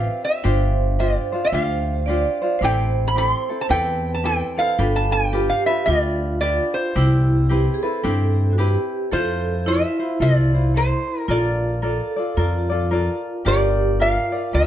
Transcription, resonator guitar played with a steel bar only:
0, 0, Header, 1, 2, 480
1, 0, Start_track
1, 0, Key_signature, 0, "major"
1, 0, Tempo, 542005
1, 391, Time_signature, 4, 2, 24, 8
1, 8078, Key_signature, -1, "major"
1, 12989, End_track
2, 0, Start_track
2, 0, Title_t, "Resonator guitar played with a steel bar"
2, 0, Program_c, 0, 25
2, 0, Note_on_c, 0, 77, 101
2, 214, Note_off_c, 0, 77, 0
2, 218, Note_on_c, 0, 76, 86
2, 883, Note_on_c, 0, 75, 71
2, 896, Note_off_c, 0, 76, 0
2, 1034, Note_off_c, 0, 75, 0
2, 1034, Note_on_c, 0, 74, 71
2, 1277, Note_off_c, 0, 74, 0
2, 1280, Note_on_c, 0, 76, 82
2, 1361, Note_off_c, 0, 76, 0
2, 1365, Note_on_c, 0, 77, 81
2, 2099, Note_off_c, 0, 77, 0
2, 2343, Note_on_c, 0, 79, 105
2, 2724, Note_on_c, 0, 83, 103
2, 2727, Note_off_c, 0, 79, 0
2, 2807, Note_off_c, 0, 83, 0
2, 2817, Note_on_c, 0, 83, 99
2, 2915, Note_off_c, 0, 83, 0
2, 2915, Note_on_c, 0, 84, 99
2, 3196, Note_off_c, 0, 84, 0
2, 3199, Note_on_c, 0, 81, 95
2, 3237, Note_off_c, 0, 81, 0
2, 3282, Note_on_c, 0, 79, 105
2, 3667, Note_off_c, 0, 79, 0
2, 3670, Note_on_c, 0, 81, 88
2, 3761, Note_off_c, 0, 81, 0
2, 3767, Note_on_c, 0, 79, 102
2, 4062, Note_on_c, 0, 77, 96
2, 4066, Note_off_c, 0, 79, 0
2, 4391, Note_on_c, 0, 81, 91
2, 4398, Note_off_c, 0, 77, 0
2, 4525, Note_off_c, 0, 81, 0
2, 4536, Note_on_c, 0, 79, 102
2, 4864, Note_off_c, 0, 79, 0
2, 4867, Note_on_c, 0, 77, 83
2, 5011, Note_off_c, 0, 77, 0
2, 5014, Note_on_c, 0, 76, 87
2, 5184, Note_off_c, 0, 76, 0
2, 5187, Note_on_c, 0, 74, 92
2, 5664, Note_off_c, 0, 74, 0
2, 5675, Note_on_c, 0, 74, 92
2, 5969, Note_on_c, 0, 72, 77
2, 5981, Note_off_c, 0, 74, 0
2, 7560, Note_off_c, 0, 72, 0
2, 8086, Note_on_c, 0, 72, 94
2, 8571, Note_on_c, 0, 76, 90
2, 8576, Note_off_c, 0, 72, 0
2, 9049, Note_off_c, 0, 76, 0
2, 9052, Note_on_c, 0, 74, 95
2, 9492, Note_off_c, 0, 74, 0
2, 9539, Note_on_c, 0, 72, 89
2, 9920, Note_off_c, 0, 72, 0
2, 9920, Note_on_c, 0, 70, 89
2, 10011, Note_off_c, 0, 70, 0
2, 10014, Note_on_c, 0, 74, 89
2, 11704, Note_off_c, 0, 74, 0
2, 11935, Note_on_c, 0, 74, 101
2, 12409, Note_off_c, 0, 74, 0
2, 12412, Note_on_c, 0, 77, 99
2, 12878, Note_off_c, 0, 77, 0
2, 12881, Note_on_c, 0, 76, 108
2, 12989, Note_off_c, 0, 76, 0
2, 12989, End_track
0, 0, End_of_file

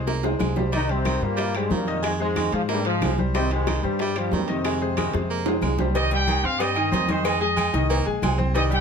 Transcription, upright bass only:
0, 0, Header, 1, 2, 480
1, 0, Start_track
1, 0, Key_signature, -3, "minor"
1, 0, Tempo, 325733
1, 1079, Time_signature, 4, 2, 24, 8
1, 12977, End_track
2, 0, Start_track
2, 0, Title_t, "Upright bass"
2, 0, Program_c, 0, 32
2, 0, Note_on_c, 0, 36, 92
2, 538, Note_off_c, 0, 36, 0
2, 581, Note_on_c, 0, 36, 91
2, 1709, Note_off_c, 0, 36, 0
2, 1783, Note_on_c, 0, 43, 96
2, 2462, Note_off_c, 0, 43, 0
2, 2506, Note_on_c, 0, 41, 99
2, 3633, Note_off_c, 0, 41, 0
2, 3711, Note_on_c, 0, 44, 91
2, 4387, Note_off_c, 0, 44, 0
2, 4435, Note_on_c, 0, 36, 100
2, 5557, Note_off_c, 0, 36, 0
2, 5644, Note_on_c, 0, 43, 97
2, 6314, Note_off_c, 0, 43, 0
2, 6354, Note_on_c, 0, 41, 96
2, 7476, Note_off_c, 0, 41, 0
2, 7568, Note_on_c, 0, 41, 92
2, 8235, Note_off_c, 0, 41, 0
2, 8280, Note_on_c, 0, 36, 94
2, 9397, Note_off_c, 0, 36, 0
2, 9473, Note_on_c, 0, 43, 93
2, 10145, Note_off_c, 0, 43, 0
2, 10192, Note_on_c, 0, 41, 91
2, 11310, Note_off_c, 0, 41, 0
2, 11399, Note_on_c, 0, 36, 109
2, 11843, Note_off_c, 0, 36, 0
2, 11877, Note_on_c, 0, 34, 78
2, 12099, Note_off_c, 0, 34, 0
2, 12120, Note_on_c, 0, 36, 103
2, 12977, Note_off_c, 0, 36, 0
2, 12977, End_track
0, 0, End_of_file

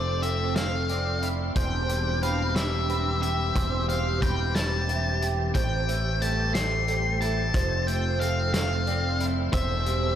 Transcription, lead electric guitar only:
0, 0, Header, 1, 2, 480
1, 0, Start_track
1, 0, Key_signature, 0, "major"
1, 0, Tempo, 664452
1, 1130, Time_signature, 6, 3, 24, 8
1, 7335, End_track
2, 0, Start_track
2, 0, Title_t, "Lead electric guitar"
2, 0, Program_c, 0, 29
2, 0, Note_on_c, 0, 74, 56
2, 150, Note_off_c, 0, 74, 0
2, 162, Note_on_c, 0, 76, 72
2, 388, Note_off_c, 0, 76, 0
2, 403, Note_on_c, 0, 77, 53
2, 918, Note_off_c, 0, 77, 0
2, 1129, Note_on_c, 0, 79, 60
2, 1609, Note_off_c, 0, 79, 0
2, 1612, Note_on_c, 0, 77, 76
2, 1847, Note_off_c, 0, 77, 0
2, 1850, Note_on_c, 0, 76, 58
2, 2320, Note_off_c, 0, 76, 0
2, 2328, Note_on_c, 0, 76, 71
2, 2782, Note_off_c, 0, 76, 0
2, 2809, Note_on_c, 0, 77, 67
2, 3046, Note_off_c, 0, 77, 0
2, 3049, Note_on_c, 0, 79, 78
2, 3285, Note_on_c, 0, 81, 58
2, 3298, Note_off_c, 0, 79, 0
2, 3800, Note_off_c, 0, 81, 0
2, 4006, Note_on_c, 0, 79, 75
2, 4492, Note_on_c, 0, 81, 81
2, 4503, Note_off_c, 0, 79, 0
2, 4725, Note_off_c, 0, 81, 0
2, 4728, Note_on_c, 0, 84, 76
2, 5205, Note_off_c, 0, 84, 0
2, 5207, Note_on_c, 0, 81, 89
2, 5687, Note_on_c, 0, 79, 76
2, 5702, Note_off_c, 0, 81, 0
2, 5911, Note_off_c, 0, 79, 0
2, 5924, Note_on_c, 0, 77, 78
2, 6159, Note_off_c, 0, 77, 0
2, 6168, Note_on_c, 0, 77, 70
2, 6677, Note_off_c, 0, 77, 0
2, 6887, Note_on_c, 0, 76, 80
2, 7335, Note_off_c, 0, 76, 0
2, 7335, End_track
0, 0, End_of_file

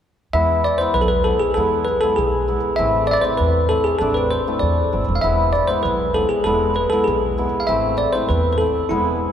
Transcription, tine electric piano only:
0, 0, Header, 1, 2, 480
1, 0, Start_track
1, 0, Tempo, 612245
1, 267, Time_signature, 2, 2, 24, 8
1, 7307, End_track
2, 0, Start_track
2, 0, Title_t, "Tine electric piano"
2, 0, Program_c, 0, 4
2, 262, Note_on_c, 0, 76, 98
2, 505, Note_on_c, 0, 74, 83
2, 511, Note_off_c, 0, 76, 0
2, 612, Note_on_c, 0, 72, 88
2, 629, Note_off_c, 0, 74, 0
2, 738, Note_on_c, 0, 71, 85
2, 743, Note_off_c, 0, 72, 0
2, 793, Note_off_c, 0, 71, 0
2, 796, Note_on_c, 0, 69, 60
2, 848, Note_on_c, 0, 71, 75
2, 854, Note_off_c, 0, 69, 0
2, 972, Note_off_c, 0, 71, 0
2, 973, Note_on_c, 0, 69, 79
2, 1094, Note_on_c, 0, 68, 69
2, 1103, Note_off_c, 0, 69, 0
2, 1210, Note_on_c, 0, 69, 85
2, 1211, Note_off_c, 0, 68, 0
2, 1447, Note_on_c, 0, 71, 84
2, 1465, Note_off_c, 0, 69, 0
2, 1567, Note_off_c, 0, 71, 0
2, 1572, Note_on_c, 0, 69, 92
2, 1694, Note_on_c, 0, 68, 75
2, 1703, Note_off_c, 0, 69, 0
2, 2034, Note_off_c, 0, 68, 0
2, 2165, Note_on_c, 0, 76, 89
2, 2398, Note_off_c, 0, 76, 0
2, 2408, Note_on_c, 0, 74, 90
2, 2441, Note_on_c, 0, 76, 74
2, 2448, Note_off_c, 0, 74, 0
2, 2459, Note_on_c, 0, 74, 91
2, 2478, Note_off_c, 0, 76, 0
2, 2520, Note_on_c, 0, 72, 76
2, 2534, Note_off_c, 0, 74, 0
2, 2643, Note_off_c, 0, 72, 0
2, 2645, Note_on_c, 0, 71, 80
2, 2892, Note_on_c, 0, 69, 85
2, 2903, Note_off_c, 0, 71, 0
2, 3012, Note_on_c, 0, 68, 73
2, 3022, Note_off_c, 0, 69, 0
2, 3126, Note_on_c, 0, 69, 92
2, 3142, Note_off_c, 0, 68, 0
2, 3249, Note_on_c, 0, 71, 75
2, 3259, Note_off_c, 0, 69, 0
2, 3377, Note_on_c, 0, 72, 79
2, 3380, Note_off_c, 0, 71, 0
2, 3603, Note_on_c, 0, 74, 73
2, 3604, Note_off_c, 0, 72, 0
2, 3948, Note_off_c, 0, 74, 0
2, 4041, Note_on_c, 0, 77, 61
2, 4088, Note_on_c, 0, 76, 87
2, 4101, Note_off_c, 0, 77, 0
2, 4332, Note_on_c, 0, 74, 86
2, 4344, Note_off_c, 0, 76, 0
2, 4449, Note_on_c, 0, 72, 81
2, 4462, Note_off_c, 0, 74, 0
2, 4568, Note_on_c, 0, 71, 78
2, 4581, Note_off_c, 0, 72, 0
2, 4818, Note_on_c, 0, 69, 80
2, 4824, Note_off_c, 0, 71, 0
2, 4930, Note_on_c, 0, 68, 71
2, 4933, Note_off_c, 0, 69, 0
2, 5050, Note_on_c, 0, 69, 88
2, 5061, Note_off_c, 0, 68, 0
2, 5280, Note_off_c, 0, 69, 0
2, 5297, Note_on_c, 0, 71, 79
2, 5407, Note_on_c, 0, 69, 88
2, 5425, Note_off_c, 0, 71, 0
2, 5521, Note_on_c, 0, 68, 66
2, 5540, Note_off_c, 0, 69, 0
2, 5867, Note_off_c, 0, 68, 0
2, 5958, Note_on_c, 0, 77, 61
2, 6012, Note_on_c, 0, 76, 79
2, 6019, Note_off_c, 0, 77, 0
2, 6241, Note_off_c, 0, 76, 0
2, 6255, Note_on_c, 0, 74, 76
2, 6371, Note_on_c, 0, 72, 85
2, 6384, Note_off_c, 0, 74, 0
2, 6497, Note_on_c, 0, 71, 70
2, 6502, Note_off_c, 0, 72, 0
2, 6675, Note_off_c, 0, 71, 0
2, 6684, Note_on_c, 0, 71, 50
2, 6724, Note_on_c, 0, 69, 76
2, 6742, Note_off_c, 0, 71, 0
2, 6972, Note_on_c, 0, 64, 61
2, 6983, Note_off_c, 0, 69, 0
2, 7307, Note_off_c, 0, 64, 0
2, 7307, End_track
0, 0, End_of_file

